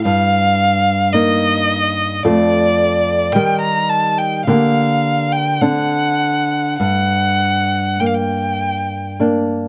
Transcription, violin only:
0.05 F5
1.13 D#5
2.23 D5
3.33 G5
3.61 A#5
3.89 A5
4.18 G5
4.46 F5
5.32 G5
5.61 F#5
6.79 F#5
8.00 G5
8.07 F5
8.14 G5

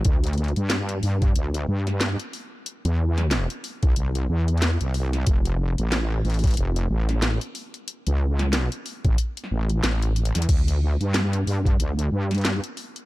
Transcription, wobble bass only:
0.05 D2
0.57 G2
1.03 G2
1.36 D2
1.68 G2
2.85 E2
3.83 C2
3.97 C2
4.29 E2
4.81 C2
5.27 F1
5.79 A1
6.25 A1
6.57 F1
6.90 A1
8.07 C#2
8.51 C2
9.05 A1
9.51 A1
9.84 A1
10.35 E2
10.49 D2
11.01 G2
11.46 G2
11.79 D2
12.12 G2

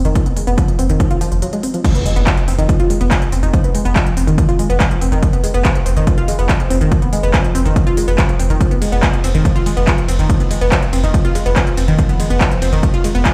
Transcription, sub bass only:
0.05 F1
0.26 F1
0.47 F1
0.68 F1
0.79 F1
0.89 F1
1.11 F1
1.32 F1
1.95 F1
2.16 F1
2.37 F1
2.48 F1
2.59 F1
2.80 F1
3.01 F1
3.22 F1
3.32 F1
3.43 F1
3.64 F1
3.85 F1
4.06 F1
4.17 F1
4.28 F1
4.49 F1
4.70 F1
4.91 F1
5.01 F1
5.12 F1
5.33 F1
5.54 F1
5.75 F1
5.86 F1
5.96 F1
6.18 F1
6.39 F1
6.60 F1
6.70 F1
6.81 F1
7.02 F1
7.23 F1
7.44 F1
7.55 F1
7.66 F1
7.87 F1
8.08 F1
8.29 F1
8.39 F1
8.50 F1
8.71 F1
8.92 F1
9.14 F1
9.24 F1
9.35 F1
9.56 F1
9.77 F1
9.98 F1
10.08 F1
10.19 F1
10.40 F1
10.61 F1
10.82 F1
10.93 F1
11.04 F1
11.25 F1
11.46 F1
11.67 F1
11.77 F1
11.88 F1
12.09 F1
12.30 F1
12.51 F1
12.62 F1
12.73 F1
12.94 F1
13.15 F1

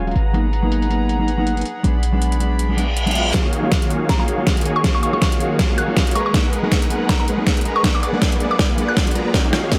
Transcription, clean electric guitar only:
0.07 F#3 G#3 C#4 F4
0.33 F#3 A#3 B3 D#4
0.63 F#3 A#3 B3 D#4
0.89 F#3 A#3 B3 D#4
1.19 F#3 A#3 B3 D#4
1.38 F#3 A#3 B3 D#4
1.56 F#3 A#3 B3 D#4
1.83 F#3 G#3 B3 D4
2.12 F#3 G#3 B3 D4
2.39 F#3 G#3 B3 D4
2.69 F#3 G#3 B3 D4
2.77 F#3 G#3 B3 D4
3.06 F#3 G#3 B3 D4
3.14 F#3 G#3 B3 F4
3.33 F#3 G#3 C#4 F4
3.62 F#3 G#3 C#4 F4
3.90 F#3 G#3 C#4 F4
4.19 F#3 G#3 C#4 F4
4.38 F#3 G#3 C#4 F4
4.56 F#3 G#3 C#4 F4
4.83 F#3 G#3 C#4 F4
5.13 F#3 G#3 C#4 F4
5.40 F#3 G#3 C#4 F4
5.69 F#3 G#3 C#4 F4
5.88 F#3 G#3 C#4 F4
6.06 F#3 G#3 C#4 F4
6.33 F#3 A#3 B3 D#4
6.63 F#3 A#3 B3 D#4
6.90 F#3 A#3 B3 D#4
7.19 F#3 A#3 B3 D#4
7.37 F#3 A#3 B3 D#4
7.56 F#3 A#3 B3 D#4
7.83 F#3 G#3 B3 D4
8.12 F#3 G#3 B3 D4
8.39 F#3 G#3 B3 D4
8.69 F#3 G#3 B3 D4
8.77 F#3 G#3 B3 D4
9.06 F#3 G#3 B3 D4
9.15 F#3 G#3 B3 F4

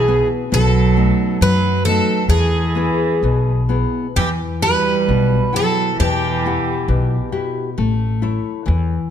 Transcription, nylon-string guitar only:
Already playing: B2
0.08 B3 E4 G#4
0.52 B2
0.96 A3 B3 D#4
1.41 F#3
1.87 A3 B3 D#4
2.32 E3
2.75 B3 E4 G#4
3.24 B2
3.69 B3 E4 G#4
4.17 E3
4.62 E4 F#4 G4
5.09 B2
5.53 E4 F#5 G5
6.00 B2
6.46 E4 G4 F#5
6.89 B2
7.32 E4 F#4 G4
7.78 A3
8.22 E4 A4 C#5
8.66 E3

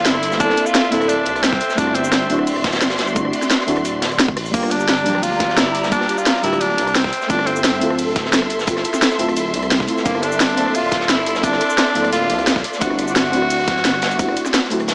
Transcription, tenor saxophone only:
0.05 E4
0.40 D4
0.66 F4
0.91 E4
1.09 D4
1.43 C4
1.78 D4
1.95 C4
4.54 A#3
4.71 D4
5.23 F4
5.57 E4
5.92 D4
6.18 F4
6.43 E4
6.61 D4
6.95 C4
7.30 D4
7.47 C4
10.06 A#3
10.23 D4
10.75 F4
11.09 E4
11.44 D4
12.13 F4
12.81 F#4

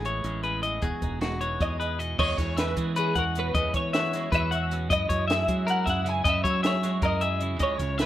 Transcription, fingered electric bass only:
Already playing: A1
0.24 A1
0.82 E1
1.02 E1
1.60 E2
2.19 E2
2.38 E2
2.77 E3
3.16 E2
3.55 E2
3.74 E3
4.32 E2
4.90 F#2
5.10 F#2
5.49 F#3
5.87 F#2
6.25 F#2
6.44 F#3
7.02 F#2
7.60 C#2
7.80 C#2

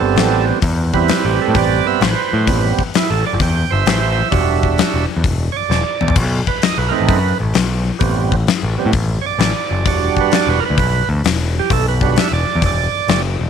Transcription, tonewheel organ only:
Already playing: G3 B3 C4 A4
0.94 G3 C4 E4 B4
1.25 G4
1.42 A4
1.58 D5
1.87 G3 B3 C4 E5
2.02 C5
2.46 G3 B3 C4
2.96 E4
3.10 A4
3.26 D5
3.42 G5
3.71 C5 E5
4.31 G3 D4 F#4
5.52 C#5
5.57 D5
6.48 B4
6.63 D#5
6.78 B4
6.88 A3 C4 D#4 A#4 B4
7.99 G3 B3 C4
8.78 G3 B3 C4
9.21 C#5
9.26 D5
9.87 G3 D4 F#4
10.21 B4
10.35 D5
10.49 B4
10.60 A#4
10.65 B4
11.59 G4
11.73 A4
11.88 B4
12.02 G3 D4 F#4
12.19 E5
12.33 D5

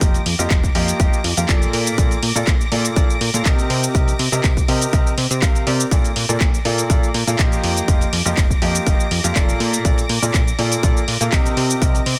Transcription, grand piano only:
0.01 F3 A#3 F4 G4 D#5
0.39 F3 A#3 F4 G4 D#5
0.75 F3 A#3 F4 G4 D#5
1.00 F3 A#3 F4 G4 D#5
1.37 F3 A#3 F4 G4 F5
1.49 A#2 A#3 F4 A4 D5
1.98 A#2 A#3 F4 A4 D5
2.36 A#2 A#3 F4 A4 D5
2.72 A#2 A#3 F4 A4 D5
2.96 A#2 A#3 F4 A4 D5
3.34 A#2 A#3 F4 A4 F5
3.45 C3 C4 G4 A#4 D#5
3.95 C3 C4 G4 A#4 D#5
4.32 C3 C4 G4 A#4 D#5
4.68 C3 C4 G4 A#4 D#5
4.93 C3 C4 G4 A#4 D#5
5.42 C3 C4 G4 A#4 F5
5.67 C4 G4 A#4 D5
5.91 A#2 A#3 F4 A4 D5
6.29 A#2 A#3 F4 A4 D5
6.65 A#2 A#3 F4 A4 D5
6.90 A#2 A#3 F4 A4 D5
7.27 A#2 A#3 F4 A4 F5
7.39 F3 A#3 F4 G4 D#5
7.88 F3 A#3 F4 G4 D#5
8.26 F3 A#3 F4 G4 D#5
8.62 F3 A#3 F4 G4 D#5
8.86 F3 A#3 F4 G4 D#5
9.24 F3 A#3 F4 G4 F5
9.36 A#2 A#3 F4 A4 D5
9.85 A#2 A#3 F4 A4 D5
10.22 A#2 A#3 F4 A4 D5
10.59 A#2 A#3 F4 A4 D5
10.83 A#2 A#3 F4 A4 D5
11.21 A#2 A#3 F4 A4 F5
11.32 C3 C4 G4 A#4 D#5
11.82 C3 C4 G4 A#4 D#5

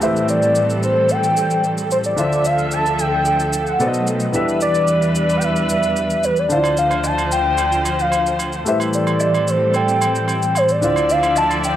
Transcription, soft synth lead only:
0.03 E5
0.30 D5
0.84 C5
1.11 G5
1.92 C5
2.06 D5
2.46 F5
2.73 A5
3.00 G5
3.68 F#5
4.35 E5
4.62 D5
5.16 D5
5.37 G5
5.43 E5
6.24 B4
6.39 D5
6.79 F5
7.06 A5
7.32 G5
8.01 F5
8.68 E5
8.95 D5
9.49 C5
9.76 G5
10.57 C5
10.71 D5
11.11 F5
11.38 A5
11.65 G5

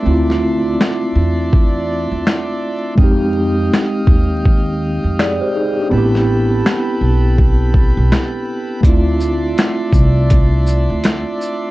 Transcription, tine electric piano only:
0.02 A3 C4
0.08 E4 F4
2.95 G#3 C4
3.01 D#4 G4
5.20 G#4 D5
5.41 G4 C5
5.55 D#4 G#4
5.79 D4 G4
5.89 B3 C4
5.95 E4 G4
8.81 A3 C4
8.87 E4 F4

